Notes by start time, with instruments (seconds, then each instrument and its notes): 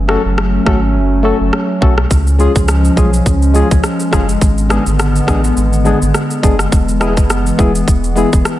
Already playing: sub bass F#1, analog synth pad F#3 A3 C#4
0.08 synth stab A3 C#4 F#4 A4, cross-stick
0.25 sub bass F#1
0.38 cross-stick
0.65 sub bass G#1, synth stab A3 C#4 F#4 A4, kick, cross-stick
0.95 sub bass F#1
1.23 synth stab A3 C#4 F#4 A4
1.40 sub bass F#1
1.53 cross-stick
1.81 sub bass B1, synth stab A3 C#4 F#4 A4, kick
1.98 cross-stick
2.11 sub bass C#2, analog synth pad F3 G#3 C#4, kick, shaker
2.27 shaker
2.39 synth stab G#3 C#4 F4 G#4, shaker
2.55 sub bass C#2, kick, shaker
2.68 cross-stick, shaker
2.85 shaker
2.96 sub bass B1, synth stab G#3 C#4 F4 G#4, kick, shaker
3.13 shaker
3.26 sub bass C#2, kick, shaker
3.42 shaker
3.54 synth stab G#3 C#4 F4 G#4, shaker
3.71 sub bass C#2, kick, shaker
3.84 cross-stick, shaker
4.00 shaker
4.12 sub bass F#1, synth stab G#3 C#4 F4 G#4, kick, cross-stick, shaker
4.29 shaker
4.41 sub bass G#1, analog synth pad D3 B3, kick, shaker
4.58 shaker
4.69 synth stab G#3 B3 D4 G#4, cross-stick, shaker
4.86 sub bass G#1, shaker
4.99 cross-stick, shaker
5.16 shaker
5.27 sub bass A1, synth stab G#3 B3 D4 G#4, kick, cross-stick, shaker
5.44 shaker
5.57 sub bass G#1, shaker
5.73 shaker
5.85 synth stab G#3 B3 D4 G#4, shaker
6.02 sub bass G#1, shaker
6.14 cross-stick, shaker
6.31 shaker
6.43 sub bass F#1, synth stab G#3 B3 D4 G#4, kick, shaker
6.59 cross-stick, shaker
6.72 sub bass E1, analog synth pad E3 B3, kick, shaker
6.89 shaker
7.00 synth stab G#3 B3 E4 G#4, cross-stick, shaker
7.17 sub bass F#1, kick, shaker
7.30 cross-stick, shaker
7.46 shaker
7.58 sub bass E1, synth stab G#3 B3 E4 G#4, kick, shaker
7.75 shaker
7.88 sub bass E1, kick, shaker
8.04 shaker
8.16 synth stab G#3 B3 E4 G#4, shaker
8.33 sub bass E1, kick, shaker
8.45 cross-stick, shaker